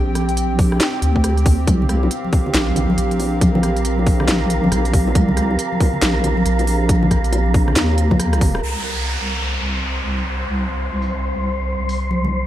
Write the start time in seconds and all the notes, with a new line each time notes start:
Already playing: A#1 C4 G4 G5
0.15 cross-stick, closed hi-hat
0.29 closed hi-hat
0.37 closed hi-hat
0.59 kick, open hi-hat
0.72 cross-stick
0.81 snare, clap, closed hi-hat
1.02 D2, closed hi-hat
1.16 kick
1.24 cross-stick, closed hi-hat
1.37 closed hi-hat
1.46 kick, open hi-hat
1.67 C2 A#4 F5, kick, closed hi-hat, high bongo, high conga
1.82 low conga
1.89 cross-stick, closed hi-hat
2.03 high bongo
2.11 closed hi-hat
2.25 high conga
2.33 kick, open hi-hat
2.46 high bongo, low conga
2.54 A#1, snare, clap, closed hi-hat
2.76 closed hi-hat, high bongo, low conga
2.90 high conga
2.98 A#1, closed hi-hat
3.11 closed hi-hat
3.20 open hi-hat, high bongo
3.41 kick, closed hi-hat, high conga
3.55 high bongo, low conga
3.63 cross-stick, closed hi-hat
3.77 closed hi-hat
3.85 closed hi-hat
3.98 high bongo, high conga
4.06 kick, open hi-hat
4.20 cross-stick, low conga
4.27 A#1, snare, clap, closed hi-hat, high bongo
4.50 closed hi-hat
4.64 high conga, low conga
4.72 A#1, cross-stick, closed hi-hat, high bongo
4.85 closed hi-hat
4.93 kick, open hi-hat
5.07 high bongo
5.15 C2, kick, closed hi-hat, high conga
5.29 low conga
5.37 cross-stick, closed hi-hat
5.51 high bongo
5.59 closed hi-hat
5.72 high conga
5.80 kick, open hi-hat, high bongo
5.94 low conga
6.02 A#1, snare, clap, closed hi-hat
6.24 closed hi-hat, high bongo, low conga
6.37 high conga
6.46 A#1, closed hi-hat
6.59 closed hi-hat, high bongo
6.67 open hi-hat
6.89 kick, closed hi-hat, high conga
7.02 high bongo, low conga
7.11 kick, cross-stick, closed hi-hat
7.24 closed hi-hat
7.33 closed hi-hat, high bongo
7.46 high conga
7.54 kick, open hi-hat
7.68 cross-stick, low conga
7.76 D#2, snare, clap, closed hi-hat, high bongo
7.98 closed hi-hat
8.11 kick, high bongo, high conga, low conga
8.20 cross-stick, closed hi-hat
8.33 cross-stick, closed hi-hat
8.41 kick, open hi-hat
8.54 cross-stick, high bongo
8.63 C2 G3 C4 C5, downlifter
9.28 open hi-hat
10.15 open hi-hat
11.02 open hi-hat
11.89 open hi-hat
12.11 A#3, high conga
12.24 low conga